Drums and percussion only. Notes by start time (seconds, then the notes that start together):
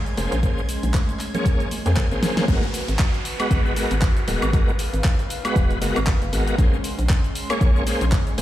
0.06 closed hi-hat, cabasa
0.17 open hi-hat, cabasa
0.32 closed hi-hat, cabasa
0.43 kick, closed hi-hat, cabasa
0.58 cabasa
0.69 open hi-hat, cabasa
0.83 closed hi-hat, high conga, cabasa
0.94 kick, clap, closed hi-hat, cabasa
1.09 closed hi-hat, cabasa
1.20 clap, open hi-hat, cabasa
1.35 closed hi-hat, low conga, cabasa
1.46 kick, closed hi-hat, cabasa
1.60 closed hi-hat, cabasa
1.71 open hi-hat, high conga, cabasa
1.86 closed hi-hat, cabasa
1.96 kick, clap, closed hi-hat, cabasa
2.11 closed hi-hat, cabasa
2.23 snare, open hi-hat, cabasa
2.37 snare, closed hi-hat, high conga, cabasa
2.48 kick, closed hi-hat, cabasa
2.63 cabasa
2.74 open hi-hat, cabasa
2.88 closed hi-hat, cabasa
2.99 kick, clap, closed hi-hat, cabasa
3.14 closed hi-hat, cabasa
3.25 open hi-hat, cabasa
3.40 closed hi-hat, cabasa, high woodblock
3.51 kick, closed hi-hat, cabasa
3.66 cabasa
3.76 open hi-hat, cabasa
3.91 closed hi-hat, cabasa
4.02 kick, clap, closed hi-hat, cabasa
4.17 closed hi-hat, cabasa
4.28 open hi-hat, cabasa
4.42 closed hi-hat, cabasa, high woodblock
4.53 kick, closed hi-hat, cabasa
4.68 cabasa
4.79 open hi-hat, cabasa
4.94 closed hi-hat, cabasa
5.04 kick, clap, closed hi-hat, cabasa
5.19 closed hi-hat, cabasa
5.30 open hi-hat, cabasa
5.45 closed hi-hat, cabasa, high woodblock
5.56 kick, closed hi-hat, cabasa
5.71 closed hi-hat, cabasa
5.82 open hi-hat, cabasa
5.96 closed hi-hat, cabasa, high woodblock
6.07 kick, clap, closed hi-hat, cabasa
6.22 closed hi-hat, cabasa
6.33 open hi-hat, cabasa
6.47 closed hi-hat, cabasa
6.58 kick, closed hi-hat, cabasa
6.74 cabasa
6.84 open hi-hat, cabasa
6.99 closed hi-hat, cabasa
7.09 kick, clap, closed hi-hat, cabasa
7.24 closed hi-hat, cabasa
7.35 open hi-hat, cabasa
7.50 closed hi-hat, cabasa, high woodblock
7.61 kick, closed hi-hat, cabasa
7.76 cabasa
7.87 open hi-hat, cabasa
8.01 closed hi-hat, cabasa
8.12 kick, clap, closed hi-hat, cabasa
8.27 closed hi-hat, cabasa
8.38 open hi-hat, cabasa